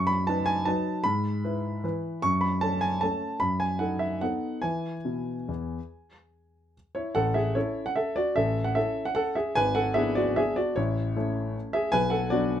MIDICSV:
0, 0, Header, 1, 2, 480
1, 0, Start_track
1, 0, Key_signature, 3, "major"
1, 0, Tempo, 391134
1, 1293, Time_signature, 3, 2, 24, 8
1, 4665, Tempo, 417537
1, 9465, Tempo, 400000
1, 12825, Tempo, 387347
1, 15084, End_track
2, 0, Start_track
2, 0, Title_t, "Grand piano"
2, 0, Program_c, 0, 0
2, 0, Note_on_c, 0, 42, 58
2, 0, Note_on_c, 0, 85, 98
2, 82, Note_on_c, 0, 83, 91
2, 105, Control_c, 0, 64, 127
2, 323, Note_off_c, 0, 42, 0
2, 323, Note_off_c, 0, 83, 0
2, 331, Note_on_c, 0, 81, 87
2, 347, Note_on_c, 0, 63, 39
2, 354, Note_on_c, 0, 71, 46
2, 560, Note_on_c, 0, 80, 89
2, 569, Note_off_c, 0, 81, 0
2, 772, Note_off_c, 0, 63, 0
2, 776, Note_off_c, 0, 71, 0
2, 803, Note_on_c, 0, 81, 84
2, 807, Note_off_c, 0, 80, 0
2, 817, Note_on_c, 0, 54, 43
2, 819, Note_on_c, 0, 63, 45
2, 823, Control_c, 0, 64, 0
2, 828, Note_on_c, 0, 71, 46
2, 834, Note_off_c, 0, 85, 0
2, 1249, Note_off_c, 0, 54, 0
2, 1250, Note_off_c, 0, 63, 0
2, 1254, Note_off_c, 0, 71, 0
2, 1271, Note_on_c, 0, 83, 96
2, 1289, Note_off_c, 0, 81, 0
2, 1292, Note_on_c, 0, 44, 53
2, 1489, Control_c, 0, 64, 127
2, 1752, Note_off_c, 0, 44, 0
2, 1772, Note_on_c, 0, 64, 40
2, 1775, Note_on_c, 0, 71, 44
2, 2207, Note_off_c, 0, 64, 0
2, 2209, Note_off_c, 0, 71, 0
2, 2253, Note_on_c, 0, 52, 41
2, 2256, Note_on_c, 0, 64, 42
2, 2264, Note_on_c, 0, 71, 48
2, 2267, Control_c, 0, 64, 0
2, 2686, Note_off_c, 0, 52, 0
2, 2688, Note_off_c, 0, 64, 0
2, 2692, Note_off_c, 0, 71, 0
2, 2723, Note_off_c, 0, 83, 0
2, 2730, Note_on_c, 0, 85, 97
2, 2738, Note_on_c, 0, 42, 54
2, 2956, Note_on_c, 0, 83, 80
2, 2959, Control_c, 0, 64, 127
2, 2968, Note_off_c, 0, 85, 0
2, 3200, Note_off_c, 0, 42, 0
2, 3204, Note_off_c, 0, 83, 0
2, 3205, Note_on_c, 0, 81, 87
2, 3221, Note_on_c, 0, 61, 40
2, 3226, Note_on_c, 0, 69, 43
2, 3448, Note_on_c, 0, 80, 85
2, 3453, Note_off_c, 0, 81, 0
2, 3658, Note_off_c, 0, 61, 0
2, 3661, Note_off_c, 0, 69, 0
2, 3692, Note_on_c, 0, 81, 81
2, 3697, Note_off_c, 0, 80, 0
2, 3710, Note_on_c, 0, 61, 38
2, 3711, Note_on_c, 0, 57, 39
2, 3718, Note_on_c, 0, 69, 42
2, 3719, Control_c, 0, 64, 0
2, 4138, Note_off_c, 0, 57, 0
2, 4138, Note_off_c, 0, 61, 0
2, 4142, Note_off_c, 0, 69, 0
2, 4169, Note_on_c, 0, 83, 87
2, 4176, Note_off_c, 0, 81, 0
2, 4185, Note_on_c, 0, 42, 48
2, 4414, Note_off_c, 0, 83, 0
2, 4414, Note_on_c, 0, 80, 76
2, 4452, Control_c, 0, 64, 127
2, 4651, Note_on_c, 0, 78, 66
2, 4653, Note_off_c, 0, 42, 0
2, 4662, Note_off_c, 0, 80, 0
2, 4663, Note_on_c, 0, 63, 40
2, 4673, Note_on_c, 0, 69, 38
2, 4885, Note_on_c, 0, 76, 73
2, 4893, Note_off_c, 0, 78, 0
2, 5092, Note_off_c, 0, 63, 0
2, 5097, Note_off_c, 0, 69, 0
2, 5132, Note_off_c, 0, 76, 0
2, 5139, Note_on_c, 0, 78, 76
2, 5147, Control_c, 0, 64, 0
2, 5153, Note_on_c, 0, 59, 37
2, 5154, Note_on_c, 0, 63, 37
2, 5165, Note_on_c, 0, 69, 38
2, 5578, Note_off_c, 0, 59, 0
2, 5579, Note_off_c, 0, 63, 0
2, 5584, Note_off_c, 0, 69, 0
2, 5601, Note_on_c, 0, 80, 72
2, 5614, Note_on_c, 0, 64, 36
2, 5615, Note_on_c, 0, 71, 35
2, 5617, Note_off_c, 0, 78, 0
2, 5618, Note_on_c, 0, 52, 43
2, 5857, Control_c, 0, 64, 127
2, 5957, Note_off_c, 0, 52, 0
2, 6003, Note_off_c, 0, 64, 0
2, 6004, Note_off_c, 0, 71, 0
2, 6099, Note_on_c, 0, 47, 42
2, 6449, Note_off_c, 0, 47, 0
2, 6600, Note_on_c, 0, 40, 45
2, 6618, Control_c, 0, 64, 0
2, 6935, Note_off_c, 0, 40, 0
2, 7289, Control_c, 0, 64, 127
2, 8037, Note_off_c, 0, 80, 0
2, 8059, Control_c, 0, 64, 0
2, 8281, Note_on_c, 0, 73, 72
2, 8293, Note_on_c, 0, 64, 50
2, 8508, Note_off_c, 0, 64, 0
2, 8511, Note_on_c, 0, 78, 90
2, 8518, Note_off_c, 0, 73, 0
2, 8520, Note_on_c, 0, 69, 76
2, 8525, Note_on_c, 0, 33, 56
2, 8733, Note_off_c, 0, 69, 0
2, 8736, Note_on_c, 0, 76, 69
2, 8745, Note_off_c, 0, 78, 0
2, 8753, Control_c, 0, 64, 127
2, 8753, Note_on_c, 0, 68, 54
2, 8971, Note_off_c, 0, 68, 0
2, 8974, Note_off_c, 0, 33, 0
2, 8974, Note_on_c, 0, 73, 75
2, 8980, Note_off_c, 0, 76, 0
2, 8983, Note_on_c, 0, 61, 43
2, 8987, Note_on_c, 0, 64, 58
2, 8992, Note_on_c, 0, 69, 46
2, 8996, Control_c, 0, 64, 0
2, 9320, Note_off_c, 0, 64, 0
2, 9329, Note_on_c, 0, 78, 82
2, 9339, Note_off_c, 0, 73, 0
2, 9440, Note_off_c, 0, 69, 0
2, 9442, Note_on_c, 0, 76, 69
2, 9455, Note_off_c, 0, 78, 0
2, 9457, Note_on_c, 0, 69, 56
2, 9682, Note_on_c, 0, 74, 80
2, 9685, Note_off_c, 0, 69, 0
2, 9694, Note_off_c, 0, 76, 0
2, 9699, Note_on_c, 0, 66, 58
2, 9889, Note_off_c, 0, 61, 0
2, 9919, Note_off_c, 0, 66, 0
2, 9921, Note_on_c, 0, 76, 83
2, 9927, Note_off_c, 0, 74, 0
2, 9934, Note_on_c, 0, 69, 66
2, 9936, Note_on_c, 0, 33, 53
2, 10159, Control_c, 0, 64, 127
2, 10261, Note_off_c, 0, 69, 0
2, 10266, Note_on_c, 0, 78, 78
2, 10279, Note_off_c, 0, 76, 0
2, 10393, Note_off_c, 0, 33, 0
2, 10394, Note_on_c, 0, 76, 80
2, 10397, Note_off_c, 0, 78, 0
2, 10409, Note_on_c, 0, 61, 41
2, 10414, Note_on_c, 0, 69, 61
2, 10415, Note_on_c, 0, 64, 42
2, 10420, Control_c, 0, 64, 0
2, 10752, Note_off_c, 0, 69, 0
2, 10758, Note_on_c, 0, 78, 83
2, 10767, Note_off_c, 0, 76, 0
2, 10852, Note_off_c, 0, 78, 0
2, 10870, Note_on_c, 0, 78, 95
2, 10885, Note_on_c, 0, 69, 75
2, 11117, Note_off_c, 0, 69, 0
2, 11118, Note_on_c, 0, 76, 68
2, 11127, Note_off_c, 0, 78, 0
2, 11130, Note_on_c, 0, 68, 51
2, 11328, Note_off_c, 0, 61, 0
2, 11331, Note_off_c, 0, 64, 0
2, 11355, Note_off_c, 0, 68, 0
2, 11358, Note_on_c, 0, 80, 98
2, 11365, Note_off_c, 0, 76, 0
2, 11373, Note_on_c, 0, 32, 54
2, 11374, Note_on_c, 0, 71, 78
2, 11590, Note_on_c, 0, 78, 91
2, 11594, Note_off_c, 0, 71, 0
2, 11602, Control_c, 0, 64, 127
2, 11602, Note_on_c, 0, 69, 66
2, 11603, Note_off_c, 0, 80, 0
2, 11823, Note_on_c, 0, 76, 86
2, 11830, Note_off_c, 0, 69, 0
2, 11836, Note_off_c, 0, 32, 0
2, 11838, Note_on_c, 0, 68, 67
2, 11842, Note_off_c, 0, 78, 0
2, 11843, Note_on_c, 0, 59, 39
2, 11843, Note_on_c, 0, 62, 42
2, 11848, Note_on_c, 0, 64, 47
2, 12073, Note_off_c, 0, 68, 0
2, 12077, Note_on_c, 0, 74, 80
2, 12084, Note_off_c, 0, 76, 0
2, 12093, Note_on_c, 0, 66, 65
2, 12327, Note_off_c, 0, 66, 0
2, 12328, Note_on_c, 0, 76, 84
2, 12336, Note_off_c, 0, 74, 0
2, 12346, Note_on_c, 0, 68, 67
2, 12359, Control_c, 0, 64, 0
2, 12567, Note_on_c, 0, 74, 77
2, 12573, Note_off_c, 0, 68, 0
2, 12579, Note_on_c, 0, 66, 60
2, 12582, Note_off_c, 0, 76, 0
2, 12770, Note_off_c, 0, 59, 0
2, 12770, Note_off_c, 0, 62, 0
2, 12773, Note_off_c, 0, 64, 0
2, 12800, Note_off_c, 0, 66, 0
2, 12801, Note_on_c, 0, 73, 78
2, 12811, Note_off_c, 0, 74, 0
2, 12813, Note_on_c, 0, 33, 56
2, 12815, Note_on_c, 0, 64, 59
2, 13047, Control_c, 0, 64, 127
2, 13279, Note_off_c, 0, 33, 0
2, 13290, Note_off_c, 0, 64, 0
2, 13304, Note_on_c, 0, 57, 45
2, 13304, Note_on_c, 0, 61, 44
2, 13309, Note_on_c, 0, 64, 47
2, 13774, Note_off_c, 0, 73, 0
2, 13797, Control_c, 0, 64, 0
2, 14010, Note_on_c, 0, 76, 83
2, 14026, Note_on_c, 0, 68, 63
2, 14213, Note_off_c, 0, 57, 0
2, 14213, Note_off_c, 0, 61, 0
2, 14215, Note_off_c, 0, 64, 0
2, 14239, Note_on_c, 0, 80, 98
2, 14244, Note_off_c, 0, 68, 0
2, 14252, Note_off_c, 0, 76, 0
2, 14252, Note_on_c, 0, 35, 57
2, 14253, Note_on_c, 0, 71, 78
2, 14465, Note_on_c, 0, 78, 76
2, 14471, Control_c, 0, 64, 127
2, 14474, Note_off_c, 0, 71, 0
2, 14482, Note_on_c, 0, 69, 60
2, 14484, Note_off_c, 0, 80, 0
2, 14712, Note_off_c, 0, 69, 0
2, 14716, Note_on_c, 0, 74, 82
2, 14717, Note_off_c, 0, 35, 0
2, 14720, Note_off_c, 0, 78, 0
2, 14732, Note_on_c, 0, 66, 63
2, 14735, Note_on_c, 0, 59, 41
2, 14736, Note_on_c, 0, 54, 43
2, 14741, Note_on_c, 0, 62, 50
2, 15076, Note_off_c, 0, 66, 0
2, 15084, Note_off_c, 0, 54, 0
2, 15084, Note_off_c, 0, 59, 0
2, 15084, Note_off_c, 0, 62, 0
2, 15084, Note_off_c, 0, 74, 0
2, 15084, End_track
0, 0, End_of_file